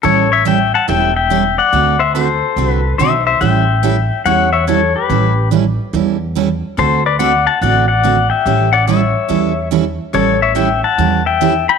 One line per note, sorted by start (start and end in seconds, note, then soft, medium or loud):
0.03 0.72 A1 medium
0.03 0.26 E3 medium
0.03 0.26 G3 medium
0.03 0.26 C#4 medium
0.03 0.26 E4 medium
0.03 0.29 A4 medium
0.03 0.26 A4 medium
0.03 0.31 C#5 loud
0.32 0.45 C#5 medium
0.32 0.45 E5 medium
0.45 0.57 E3 medium
0.45 0.57 G3 medium
0.45 0.58 C#4 medium
0.45 0.58 E4 medium
0.45 0.58 A4 medium
0.45 0.72 E5 medium
0.45 0.75 G5 loud
0.74 0.88 F#5 medium
0.74 0.89 A5 medium
0.88 1.56 E1 medium
0.88 1.10 E3 medium
0.88 1.10 G3 medium
0.88 1.10 C#4 medium
0.88 1.10 E4 medium
0.88 1.11 A4 medium
0.88 1.14 E5 medium
0.88 1.15 G5 loud
1.16 1.55 E5 medium
1.16 1.59 G5 loud
1.30 1.42 E3 medium
1.30 1.42 G3 medium
1.30 1.42 C#4 medium
1.30 1.43 E4 medium
1.30 1.43 A4 medium
1.58 1.97 D5 medium
1.58 2.02 F#5 medium
1.73 2.40 D2 medium
1.73 1.95 D3 medium
1.73 1.95 A3 medium
1.73 1.95 C4 medium
1.73 1.95 F#4 medium
1.73 1.95 A4 medium
1.99 2.13 C5 medium
1.99 2.15 E5 medium
2.15 2.27 D3 medium
2.15 2.27 A3 medium
2.15 2.27 C4 medium
2.15 2.27 F#4 medium
2.15 2.95 A4 medium
2.15 2.27 A4 medium
2.15 2.70 C5 medium
2.56 2.92 C2 medium
2.56 2.79 D3 medium
2.56 2.79 A3 medium
2.56 2.79 C4 medium
2.56 2.80 F#4 medium
2.56 2.80 A4 medium
2.70 2.95 B4 medium
2.98 3.35 B1 medium
2.98 3.11 D3 medium
2.98 3.11 A3 medium
2.98 3.11 C4 medium
2.98 3.11 F#4 medium
2.98 3.12 A4 medium
2.98 3.24 C5 medium
2.98 3.25 E5 medium
3.27 3.40 C5 medium
3.27 3.40 E5 medium
3.41 4.08 A1 medium
3.41 3.63 E3 medium
3.41 3.63 G3 medium
3.41 3.63 C#4 medium
3.41 3.63 E4 medium
3.41 3.64 A4 medium
3.41 4.22 E5 medium
3.41 4.21 G5 medium
3.83 3.95 E3 medium
3.83 3.95 G3 medium
3.83 3.95 C#4 medium
3.83 3.95 E4 medium
3.83 3.95 A4 medium
4.25 4.93 E2 medium
4.25 4.47 E3 medium
4.25 4.48 G3 medium
4.25 4.48 C#4 medium
4.25 4.48 E4 medium
4.25 4.48 A4 medium
4.25 4.51 C#5 medium
4.25 4.52 F#5 medium
4.53 4.66 C#5 medium
4.53 4.68 E5 medium
4.67 4.79 E3 medium
4.67 4.79 G3 medium
4.67 4.80 C#4 medium
4.67 4.80 E4 medium
4.67 4.93 A4 medium
4.67 4.80 A4 medium
4.67 4.96 C#5 medium
4.96 5.48 G4 medium
4.96 5.48 B4 medium
5.09 5.77 A1 medium
5.09 5.31 E3 soft
5.09 5.32 G3 medium
5.09 5.32 C#4 medium
5.09 5.32 E4 medium
5.09 5.32 A4 medium
5.51 5.63 E3 medium
5.51 5.63 G3 medium
5.51 5.64 C#4 medium
5.51 5.64 E4 medium
5.51 5.64 A4 medium
5.93 6.61 E2 medium
5.93 6.15 E3 medium
5.93 6.16 G3 medium
5.93 6.16 C#4 medium
5.93 6.16 E4 medium
5.93 6.16 A4 medium
6.35 6.47 E3 medium
6.35 6.47 G3 medium
6.35 6.48 C#4 medium
6.35 6.48 E4 medium
6.35 6.48 A4 medium
6.77 7.45 D2 medium
6.77 6.99 D3 soft
6.77 7.00 A3 medium
6.77 7.00 C4 medium
6.77 7.00 F#4 medium
6.77 7.04 A4 medium
6.77 7.00 A4 medium
6.77 7.04 C5 medium
7.06 7.19 B4 medium
7.06 7.18 D5 medium
7.19 7.31 D3 medium
7.19 7.31 A3 medium
7.19 7.31 C4 medium
7.19 7.31 F#4 medium
7.19 7.32 A4 medium
7.19 7.45 D5 medium
7.19 7.45 F#5 medium
7.46 7.60 F#5 medium
7.46 7.62 A5 loud
7.61 8.29 A1 medium
7.61 7.84 D3 medium
7.61 7.84 A3 medium
7.61 7.84 C4 medium
7.61 7.84 F#4 medium
7.61 7.85 A4 medium
7.61 7.88 D5 medium
7.61 7.87 F#5 loud
7.88 8.28 D5 medium
7.88 8.28 F#5 medium
8.03 8.15 D3 medium
8.03 8.16 A3 medium
8.03 8.16 C4 medium
8.03 8.16 F#4 medium
8.03 8.16 A4 medium
8.30 8.70 E5 medium
8.30 8.74 G5 loud
8.46 9.13 A1 medium
8.46 8.68 E3 medium
8.46 8.68 G3 medium
8.46 8.68 C#4 medium
8.46 8.69 E4 medium
8.46 8.68 A4 medium
8.73 8.87 D5 medium
8.73 8.87 F#5 medium
8.88 8.99 E3 medium
8.88 9.00 G3 medium
8.88 9.00 C#4 medium
8.88 9.00 E4 medium
8.88 9.00 A4 medium
8.88 9.68 C#5 medium
8.88 9.68 E5 medium
9.28 9.97 E2 medium
9.28 9.51 E3 medium
9.28 9.51 G3 medium
9.28 9.52 C#4 medium
9.28 9.52 E4 medium
9.28 9.52 A4 medium
9.71 9.83 E3 medium
9.71 9.83 G3 medium
9.71 9.84 C#4 medium
9.71 9.84 E4 medium
9.71 9.84 A4 medium
10.13 10.81 A1 medium
10.13 10.36 E3 medium
10.13 10.36 G3 medium
10.13 10.36 C#4 medium
10.13 10.36 E4 medium
10.13 10.36 A4 medium
10.13 10.40 A4 medium
10.13 10.42 C#5 medium
10.42 10.56 C#5 medium
10.42 10.55 E5 medium
10.55 10.67 E3 medium
10.55 10.67 G3 medium
10.55 10.68 C#4 medium
10.55 10.68 E4 medium
10.55 10.68 A4 medium
10.55 10.82 E5 medium
10.55 10.81 G5 medium
10.84 11.23 F#5 medium
10.84 11.27 A5 medium
10.98 11.66 E2 medium
10.98 11.20 E3 medium
10.98 11.20 G3 medium
10.98 11.20 C#4 medium
10.98 11.21 E4 medium
10.98 11.21 A4 medium
11.26 11.65 E5 medium
11.26 11.69 G5 medium
11.41 11.52 E3 medium
11.41 11.52 G3 medium
11.41 11.53 C#4 medium
11.41 11.53 E4 medium
11.41 11.53 A4 medium
11.69 11.78 G5 medium
11.69 11.78 B5 loud